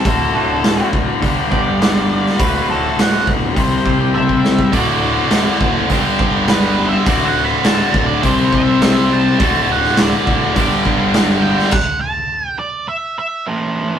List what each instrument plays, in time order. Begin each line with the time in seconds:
Already playing: lead electric guitar A4
0.05 picked electric bass D1, distorted electric guitar D2 A2 D3 A3 F#4, kick, open hi-hat
0.20 muted clean electric guitar stroke
0.35 clean electric guitar A2 D3 A3 F#4
0.64 snare, open hi-hat
0.78 clean electric guitar A2 D3 A3 F#4
0.93 picked electric bass D1, kick
1.21 picked electric bass G1, distorted electric guitar G2 D3 G3 B3 D4 G4, muted clean electric guitar stroke, kick, open hi-hat
1.51 picked electric bass G1, clean electric guitar G3 B3 D4 G4, lead electric guitar D5, kick
1.67 clean electric guitar G3 B3 D4 G4
1.81 snare, open hi-hat
2.26 snare
2.37 picked electric bass D1, distorted electric guitar D2 A2 D3 A3 F#4, lead electric guitar B4, kick, open hi-hat
2.69 clean electric guitar A2 D3 A3 F#4, lead electric guitar A4
2.97 muted clean electric guitar stroke, snare, open hi-hat
3.01 lead electric guitar F#5
3.12 clean electric guitar A2 D3 A3 F#4
3.27 picked electric bass G1, kick
3.55 picked electric bass C2, distorted electric guitar C3 G3 C4 E4 G4 C5, muted clean electric guitar stroke, kick, open hi-hat
3.84 picked electric bass C2, clean electric guitar C4 E4 G4 C5, kick
4.00 clean electric guitar C4 E4 G4 C5
4.15 lead electric guitar E5, high tom
4.29 muted clean electric guitar stroke, kick
4.45 snare
4.59 kick
4.72 picked electric bass D1, distorted electric guitar D2 A2 D3 A3 F#4, lead electric guitar D5, kick, open hi-hat
5.31 snare, open hi-hat
5.60 picked electric bass F#1, kick
5.90 picked electric bass G1, distorted electric guitar G2 D3 G3 B3 D4 G4, kick, open hi-hat
6.19 picked electric bass G1, kick
6.48 lead electric guitar B4, snare, open hi-hat
6.89 lead electric guitar E5
7.05 picked electric bass D1, distorted electric guitar D2 A2 D3 A3 F#4, lead electric guitar D5, kick, open hi-hat
7.25 lead electric guitar F#5
7.44 lead electric guitar B5
7.64 lead electric guitar A5, snare, open hi-hat
7.94 picked electric bass D1, kick
8.06 lead electric guitar D5
8.22 picked electric bass C2, distorted electric guitar C3 G3 C4 E4 G4 C5, kick, open hi-hat
8.53 picked electric bass C2, lead electric guitar E5, kick
8.82 snare, open hi-hat
9.13 lead electric guitar A5
9.38 picked electric bass D1, distorted electric guitar D2 A2 D3 A3 F#4, kick, open hi-hat
9.72 lead electric guitar F#5
9.84 snare
9.97 lead electric guitar D5, snare, open hi-hat
10.27 picked electric bass D1, kick
10.55 picked electric bass G1, distorted electric guitar G2 D3 G3 B3 D4 G4, kick, open hi-hat
10.85 picked electric bass G1, kick
11.14 snare, open hi-hat
11.42 lead electric guitar G5
11.59 snare
11.71 lead electric guitar F#5, kick, crash
12.01 lead electric guitar A5
12.48 lead electric guitar G5
12.59 lead electric guitar D5
12.88 lead electric guitar E5
13.19 lead electric guitar E5
13.47 lead electric guitar E3 E4 C#5